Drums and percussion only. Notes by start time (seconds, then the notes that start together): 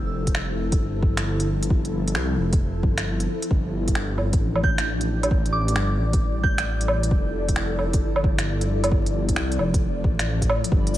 0.27 kick, closed hi-hat
0.35 finger snap
0.72 kick, closed hi-hat
1.03 kick
1.17 finger snap, closed hi-hat
1.40 closed hi-hat
1.63 closed hi-hat
1.70 kick
1.85 closed hi-hat
2.08 closed hi-hat
2.15 finger snap
2.53 kick, closed hi-hat
2.83 kick
2.98 finger snap, closed hi-hat
3.20 closed hi-hat
3.42 closed hi-hat
3.51 kick
3.88 kick, closed hi-hat
3.95 finger snap
4.18 low woodblock
4.33 kick, closed hi-hat
4.55 low woodblock
4.63 kick
4.78 finger snap, closed hi-hat
5.01 closed hi-hat
5.23 closed hi-hat, low woodblock
5.31 kick
5.46 closed hi-hat
5.68 closed hi-hat
5.76 finger snap
6.13 kick, closed hi-hat
6.44 kick
6.58 finger snap, closed hi-hat
6.81 closed hi-hat
6.88 low woodblock
7.03 closed hi-hat
7.11 kick
7.49 kick, closed hi-hat
7.56 finger snap
7.79 low woodblock
7.93 kick, closed hi-hat
8.16 low woodblock
8.24 kick
8.38 finger snap, closed hi-hat
8.61 closed hi-hat
8.84 closed hi-hat, low woodblock
8.92 kick
9.06 closed hi-hat
9.29 kick, closed hi-hat
9.36 finger snap
9.52 closed hi-hat
9.59 low woodblock
9.74 kick, closed hi-hat
10.04 kick
10.19 finger snap, closed hi-hat
10.42 kick, closed hi-hat
10.50 low woodblock
10.64 closed hi-hat
10.72 kick
10.87 closed hi-hat
10.95 cabasa